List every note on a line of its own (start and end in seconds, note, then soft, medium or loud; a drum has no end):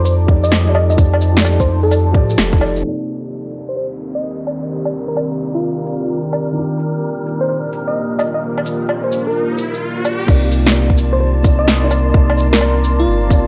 0.00 0.97 F2 loud
0.00 0.27 F3 medium
0.00 0.27 D#4 medium
0.00 2.81 D#4 medium
0.00 0.29 G4 medium
0.00 2.80 G4 medium
0.00 0.30 A4 medium
0.00 0.30 D5 medium
0.00 2.80 A5 medium
0.00 2.80 D6 medium
0.05 0.15 C5 medium
0.05 shaker medium
0.27 0.62 F3 medium
0.27 0.63 D#4 medium
0.27 0.63 G4 medium
0.27 0.64 A4 medium
0.27 0.64 D5 medium
0.27 kick loud
0.44 0.68 D#5 medium
0.44 shaker medium
0.52 snare loud
0.52 shaker medium
0.65 0.95 F3 medium
0.65 0.96 D#4 medium
0.65 0.96 G4 medium
0.65 0.97 A4 medium
0.69 0.97 D5 medium
0.75 0.84 D#5 medium
0.75 low woodblock medium
0.90 0.95 D#5 medium
0.90 shaker soft
0.96 2.16 F2 loud
0.96 1.31 F3 medium
0.96 1.32 D#4 medium
0.96 1.33 G4 medium
0.96 1.33 A4 medium
0.96 1.34 D5 medium
0.96 kick loud
0.96 shaker medium
1.14 low woodblock medium
1.21 shaker medium
1.32 2.10 F3 medium
1.32 2.11 D#4 medium
1.36 2.12 G4 medium
1.36 2.13 A4 medium
1.36 snare loud
1.41 2.14 D5 medium
1.45 low woodblock medium
1.45 shaker medium
1.60 1.80 C5 medium
1.60 kick medium
1.60 shaker soft
1.83 2.14 A4 medium
1.91 low woodblock soft
1.91 shaker medium
2.12 2.36 A2 medium
2.12 2.57 F3 loud
2.12 2.58 D#4 medium
2.12 2.59 G4 medium
2.12 2.59 A4 medium
2.12 2.60 D5 loud
2.12 kick loud
2.30 shaker medium
2.37 2.83 F1 medium
2.37 snare loud
2.37 shaker medium
2.53 kick loud
2.58 2.81 F3 medium
2.58 2.81 D#4 medium
2.58 2.82 G4 medium
2.58 2.82 A4 medium
2.58 low woodblock medium
2.62 2.83 D5 loud
2.76 6.52 C3 medium
2.76 shaker soft
2.83 10.24 D#3 medium
2.83 6.54 A#3 medium
2.83 6.52 C4 medium
2.83 6.55 D#4 medium
2.83 10.24 G4 medium
2.83 10.29 A#4 medium
2.83 6.52 A#4 medium
2.83 10.24 D5 medium
2.83 downlifter medium
2.88 6.56 D5 medium
3.08 shaker soft
3.54 shaker medium
3.69 3.74 C5 medium
3.76 3.87 C5 medium
4.00 shaker medium
4.15 4.39 D#5 medium
4.47 low woodblock soft
4.47 shaker medium
4.85 low woodblock medium
4.93 shaker soft
5.08 5.32 A#4 medium
5.17 low woodblock medium
5.40 shaker medium
5.55 6.18 F4 medium
5.86 shaker medium
6.33 low woodblock soft
6.33 shaker medium
6.52 10.24 D#3 medium
6.52 10.24 A#3 medium
6.52 10.26 D4 medium
6.52 10.24 F4 medium
6.52 riser medium
6.57 10.27 F4 medium
6.57 10.28 G4 medium
6.79 shaker soft
7.26 shaker medium
7.41 7.46 C5 medium
7.49 7.59 C5 medium
7.73 shaker medium
7.88 8.12 D#5 medium
8.19 8.29 D#5 medium
8.19 low woodblock soft
8.19 shaker medium
8.34 8.39 D#5 medium
8.58 low woodblock soft
8.66 shaker soft
8.89 low woodblock medium
9.04 9.24 C5 medium
9.12 shaker soft
9.27 9.58 A#4 medium
9.58 shaker soft
9.74 shaker soft
10.05 low woodblock soft
10.05 shaker soft
10.20 shaker soft
10.26 12.13 C2 loud
10.26 10.62 C3 medium
10.26 10.63 A#3 medium
10.26 10.63 D#4 medium
10.26 13.47 A#4 medium
10.26 13.47 D5 medium
10.26 10.64 D5 medium
10.26 13.47 A5 medium
10.26 13.47 C6 medium
10.26 kick loud
10.26 crash loud
10.51 shaker medium
10.63 11.41 C3 medium
10.63 11.42 A#3 medium
10.63 snare loud
10.68 11.44 D#4 medium
10.68 11.45 D5 medium
10.90 kick medium
10.98 shaker medium
11.13 11.18 C5 medium
11.20 11.31 C5 medium
11.43 11.78 C3 medium
11.43 11.79 A#3 medium
11.43 11.80 D#4 medium
11.43 kick loud
11.43 shaker medium
11.47 11.80 D5 medium
11.59 11.83 D#5 medium
11.68 snare loud
11.81 12.11 C3 medium
11.81 12.12 A#3 medium
11.81 12.13 D#4 medium
11.81 12.13 D5 medium
11.91 low woodblock medium
11.91 shaker medium
12.12 13.06 C2 loud
12.12 12.47 C3 medium
12.12 12.49 A#3 medium
12.12 12.49 D#4 medium
12.12 12.50 D5 medium
12.12 kick loud
12.30 low woodblock medium
12.38 shaker medium
12.49 13.27 C3 medium
12.49 13.28 A#3 medium
12.53 13.30 D#4 medium
12.53 12.77 A#4 medium
12.53 snare loud
12.57 13.31 D5 medium
12.61 low woodblock medium
12.84 shaker medium
13.00 13.47 F4 medium
13.07 13.47 G1 loud
13.29 13.47 C3 medium
13.29 13.47 A#3 medium
13.29 13.47 D#4 medium
13.29 13.47 D5 medium
13.29 kick loud
13.29 shaker medium